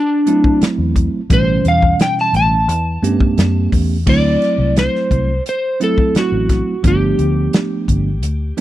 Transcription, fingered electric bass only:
0.61 muted fingered electric bass stroke
0.78 E2
1.30 A1
1.65 E2
2.33 A1
2.68 E2
3.02 G2
3.38 F#2
3.72 E2
4.06 D2
4.58 C2
5.11 C2
6.14 muted fingered electric bass stroke
6.32 A1
6.84 G1
7.19 D2
7.88 G1
8.22 D2

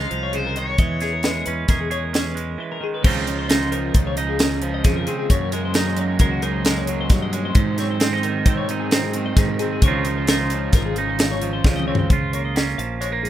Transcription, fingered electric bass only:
0.11 C2
0.79 E2
1.47 E2
1.69 E2
3.04 C#2
3.95 C#2
4.85 F2
5.30 F#2
6.20 C#2
7.10 G2
7.55 G#2
8.46 G#2
9.37 G#2
9.82 C#2
10.73 G#1
11.65 C#2
12.10 C#2
12.79 A#1

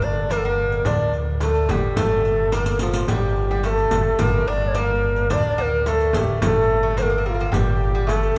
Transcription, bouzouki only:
0.02 D4
0.31 A#3
0.45 A#3
0.86 D4
1.43 A3
1.71 G3
1.98 A3
2.52 A#3
2.82 F3
3.09 G3
3.51 G3
3.65 A3
4.20 A#3
4.48 D4
4.75 A#3
5.30 D4
5.58 A#3
5.88 A3
6.42 A3
6.83 A3
6.97 A#3
7.02 A#3
7.10 A#3
7.18 A#3
7.26 A#3
7.34 A#3
7.41 A#3
7.52 G3
7.95 G3
8.07 A3

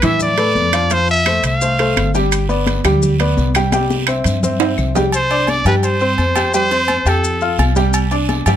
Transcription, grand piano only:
0.03 E3 E4 E5
0.38 A3 A4 B4
0.73 F3 F4 F5
0.91 F3 F4 F5
1.27 A3 A4 C5
1.62 A3 A4 C5
1.79 A3 A4 C5
2.14 G3 G4 G5
2.49 B3 B4 D5
2.85 G3 G4 G5
3.20 B3 B4 D5
3.56 G3 G4 G5
3.73 G3 G4 G5
4.08 C4 C5 E5
4.43 C4 C5 E5
4.61 C4 C5 E5
4.96 G3 G4 G5
5.31 D4 D5 D6
5.67 G3 G4 G5
6.01 C4 C5 C6
6.36 G4 G5 G6
6.54 G3 G4 G5
6.71 C4 C5 C6
7.06 G4 G5 G6
7.42 F4 F5 F6
7.76 G3 G4 G5
8.12 D4 D5 D6
8.47 G3 G4 G5

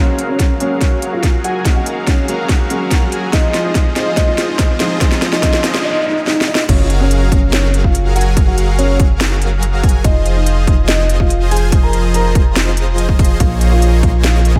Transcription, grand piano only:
Already playing: C#4 C#5
0.29 C#4 C#5
0.60 C#4 C#5
0.81 C#4 C#5
1.13 F4 F5
1.44 F#4 F#5
1.76 F#4 F#5
2.07 C#4 C#5
3.33 D#4 D#5
3.64 D#4 D#5
3.96 D#4 D#5
4.17 D#4 D#5
4.49 D#4 D#5
4.80 D#4 D#5
5.01 D#4 D#5
5.32 D#4 D#5
5.43 D#4 D#5
5.74 D#4 D#5
5.85 D#4 D#5
6.06 D#4 D#5
6.27 D#4 D#5
6.48 D#4 D#5
6.69 C#4 C#5
7.00 C#4 C#5
7.32 C#4 C#5
7.53 C#4 C#5
7.84 F4 F5
8.16 F#4 F#5
8.47 F#4 F#5
8.78 C#4 C#5
10.05 D#4 D#5
10.36 D#4 D#5
10.67 D#4 D#5
10.88 D#4 D#5
11.20 F4 F5
11.51 G#4 G#5
11.83 A#4 A#5
12.14 A#4 A#5
13.40 F4 F5
13.72 F4 F5
14.03 F4 F5
14.24 F4 F5
14.56 G#4 G#5

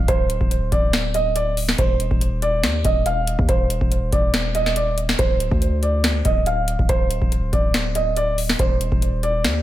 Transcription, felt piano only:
0.08 C5
0.72 D5
1.15 D#5
1.36 D5
1.79 C5
2.42 D5
2.85 D#5
3.06 F5
3.49 C5
4.12 D5
4.55 D#5
4.76 D5
5.19 C5
5.83 D5
6.25 D#5
6.47 F5
6.89 C5
7.53 D5
7.95 D#5
8.17 D5
8.60 C5
9.23 D5

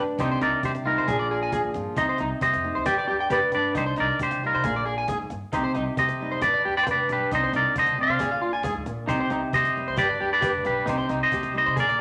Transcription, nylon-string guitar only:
Already playing: G2 B4
0.00 D4
0.20 C3
0.64 G4
0.85 G3 D#4
1.07 A#2 F3 D4 F4 G#4
1.53 G#4
1.75 F3 F4
1.97 C3
2.43 G4
2.64 D#4, muted nylon-string guitar stroke
2.85 G2
3.31 B4
3.54 G3 D4
3.76 muted nylon-string guitar stroke
4.21 G4
4.43 G3 D#4
4.66 A#2
5.10 G#2
5.33 muted nylon-string guitar stroke
5.56 C3
6.00 G4
6.21 G3 D#4
6.44 G2
6.88 B4
7.10 G3 D4
7.32 C3
7.77 D3
7.98 C3
8.21 A#2
8.66 G#2
8.88 A#2
9.09 C3
9.54 G4
9.77 G3, muted nylon-string guitar stroke
10.00 G2
10.44 B4
10.65 G3
10.87 C3
11.34 G4
11.54 G3 D#4
11.77 A#2

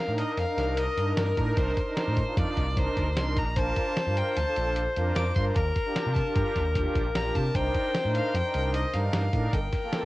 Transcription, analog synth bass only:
0.07 A2
0.37 F2
0.57 C2
0.97 G2
1.18 G2
1.37 A2
1.57 C2
2.08 A2
2.37 F2
2.57 C2
2.97 D2
3.17 C2
3.36 A#1
3.57 A#1
4.07 G2
4.37 D2
4.57 A#1
4.97 F2
5.17 F2
5.36 G2
5.56 D#2
6.06 C3
6.36 G2
6.56 D#2
6.95 A#1
7.16 A#1
7.35 C3
7.55 C2
8.05 A2
8.34 F2
8.55 C2
8.94 G2
9.14 G2
9.33 A2
9.53 G1

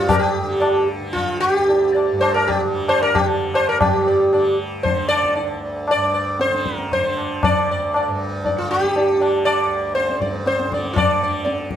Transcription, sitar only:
0.09 G4 A#4
0.19 G4
0.60 D5
1.13 F4
1.40 G4
1.94 D5
2.21 C5
2.34 A#4
2.48 G4
2.89 C5
3.02 A#4
3.15 G4
3.55 C5
3.69 A#4
3.80 G4 D5
4.08 D5
4.34 D5
4.83 C5
5.09 D5
5.35 D5
5.91 D5
6.14 D5
6.41 C5
6.75 A#4
6.93 C5
7.44 D5
7.71 D5
7.96 D5
8.46 D5
8.58 F4
8.71 G4
8.97 D5
9.21 D5
9.45 D5
9.95 C5
10.22 D5
10.47 C5
10.74 D5
10.93 F4
10.98 D5
11.23 D5
11.45 D5

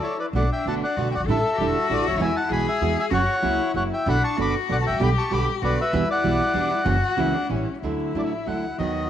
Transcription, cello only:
0.02 E4
0.34 D4
0.96 F#4
1.26 A4
1.54 F#4 G4
1.71 F#4
2.18 E4
2.49 G#4
3.11 F#4
3.42 E4
4.06 D4
4.37 F#4
4.99 G4
5.31 G4
5.62 F#4
5.93 E4
6.54 D4
6.71 E4
6.86 F#4
7.20 E4
7.34 D4
7.50 C#4
7.83 E4
8.79 F#4

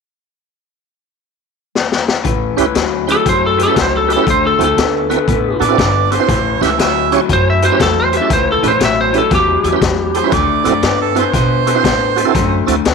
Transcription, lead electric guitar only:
3.12 A4
3.29 C5
3.46 A4
3.63 A4
3.81 C5
3.97 A4
4.13 A4
4.30 C5
4.47 A4
4.64 A4
7.33 C5
7.50 E5
7.65 C5
7.83 A4
8.00 C5
8.17 E5
8.33 C5
8.52 A4
8.68 C5
8.85 E5
9.01 C5
9.18 A4
9.35 G4

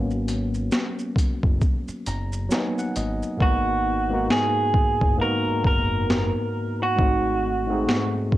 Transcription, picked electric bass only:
Already playing: G#1
1.44 F#1
1.89 muted picked electric bass stroke
2.07 F#1
2.97 G#1
3.41 G#1
5.02 F#1
5.47 muted picked electric bass stroke
5.65 F#1
6.99 G#1

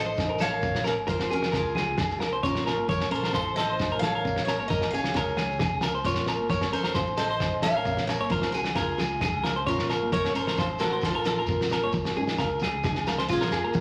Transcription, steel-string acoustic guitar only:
Already playing: C5
0.00 D#5
0.41 C#5 F5
0.87 A#4 C#5
1.09 F4 C5
1.32 F#4 A#4
1.56 F4 G#4
2.45 F4 A#4
2.89 A#4 C#5
3.11 C5
3.15 A4
3.56 D#5
3.60 C5
3.99 F5
4.04 C#5
4.45 C#5
4.50 A#4
4.68 D#5
4.72 A#4
4.91 C#5 F5
5.14 G#4 C#5
6.05 F4 A#4
6.51 A#4 C#5
6.73 A4 C5
7.18 C5 D#5
7.63 C#5 F5
8.07 A#4 C#5
8.30 F4 C5
8.52 F#4 A#4
8.75 F4 G#4
9.68 F4 A#4
10.13 A#4 C#5
10.35 A4 C5
10.80 F#4 A#4
11.05 F4 A4
11.26 F4 A#4
13.32 F4 G#4

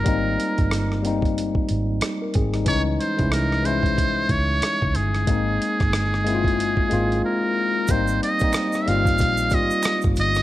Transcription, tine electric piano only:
Already playing: G#3 A#3 C4 D#4 F4
0.04 G3 A#3 C4 D#4
1.03 G3 A#3 C4
1.07 D#4
2.22 A#4
2.35 C4 G#4
2.54 G3 D#4
2.65 E3 G#3 C#4 D#4
3.17 E3 G#3 C#4 E4
3.63 E3 G#3 C#4
3.67 E4
5.27 G#3 A#3 C4 D#4
6.24 G#3 A#3 C4 E4
6.35 F4
6.90 G#3 A#3 C4 F4
7.88 G3 A#3 C4 D#4
8.40 G3 A#3 C4
8.44 D#4
8.86 G3 A#3 C4 F4
9.51 G3 A#3 C4 F4

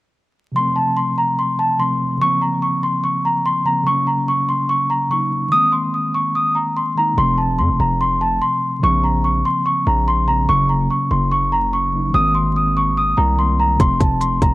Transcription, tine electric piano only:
0.52 C3 F3
0.57 A3 C4
1.78 C3 F3 A3 C4
2.17 C#3 F3
2.23 A#3 C4
3.64 C#3 F3 A#3 C4
3.83 C#3 F#3
3.88 A#3 C#4
5.09 C#3 F#3 A#3 D#4
5.48 D#3 G#3
5.53 A#3 C4
6.95 D#3 G#3 A#3 D#4
7.14 C3 F3
7.19 A3 C4
8.79 C#3 F3
8.85 A#3 C4
10.26 C#3 F3 A#3 C4
10.45 C#3 F#3
10.50 A#3 C#4
11.92 C#3 F#3 A#3 D#4
12.10 D#3 G#3
12.16 A#3 C4
13.37 D#3 G#3 A#3 C4
13.76 C3 F3
13.81 A3 C4

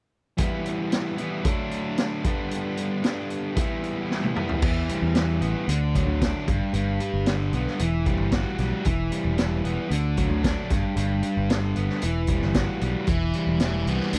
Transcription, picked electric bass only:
4.62 E2
5.02 E2
5.41 A1
5.68 D2
6.07 D2
6.48 G1
6.73 G1
7.14 G1
7.53 B1
7.80 E1
8.19 G1
8.59 B1
8.86 E1
9.25 E1
9.64 E1
9.91 D2
10.30 D2
10.71 G1
10.96 G1
11.37 G1
11.77 G1
12.03 E1
12.43 G1
12.82 B1
13.08 E1
13.47 E1
13.87 C2
14.13 D2

